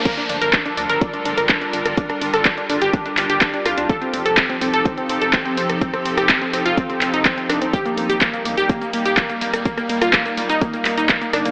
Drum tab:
CC |x---------------|----------------|----------------|----------------|
HH |xxoxxxoxxxoxxxox|xxoxxxoxxxoxxxox|xxoxxxoxxxoxxxox|xxoxxxoxxxoxxxox|
SH |----------------|----------------|----------------|----------------|
CP |----x-------x---|----x-----x-x---|----x-------x---|----x-----x-x---|
SD |---------------r|-r-r----------r-|---------------r|-r-r----------r-|
BD |o---o---o---o---|o---o---o---o---|o---o---o---o---|o---o---o---o---|

CC |----------------|----------------|
HH |xxoxxxoxxxoxxxox|xxoxxxoxxxoxxxox|
SH |xx-xxx-xxx-xxx-x|xx-xxx-xxx-xxx-x|
CP |----x-------x---|----x-----x-x---|
SD |---------------r|-r-r----------r-|
BD |o---o---o---o---|o---o---o---o---|